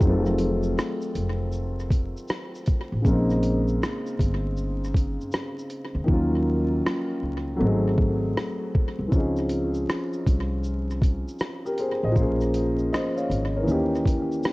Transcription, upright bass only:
0.01 F1
1.15 F1
2.92 A1
3.05 A#1
4.20 G1
5.95 D2
6.08 D#2
7.23 C#2
7.60 G#1
8.99 C2
9.12 C#2
10.27 C2
12.03 A1
12.16 A#1
13.30 G#1
13.67 D#2

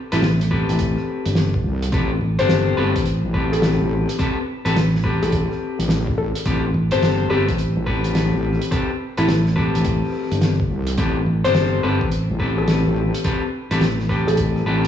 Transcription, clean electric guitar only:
0.12 C4 G4 A4 B4
0.51 C4 G4 A4 B4
1.92 C4 G4 A4 B4
2.39 C4 G4 A4 C5
2.77 C4 G4 A4 B4
3.34 C4 G4 A4 B4
4.19 C4 G4 A4 B4
4.65 C4 G4 A4 B4
5.04 C4 G4 A4 B4
6.46 C4 G4 A4 B4
6.92 C4 G4 A4 C5
7.30 C4 G4 A4 B4
7.87 C4 G4 A4 B4
8.71 C4 G4 A4 B4
9.18 C4 G4 A4 B4
9.56 C4 G4 A4 B4
10.98 C4 G4 A4 B4
11.44 C4 G4 A4 C5
11.83 C4 G4 A4 B4
12.40 C4 G4 A4 B4
13.24 C4 G4 A4 B4
13.71 C4 G4 A4 B4
14.09 C4 G4 A4 B4
14.66 C4 G4 A4 B4

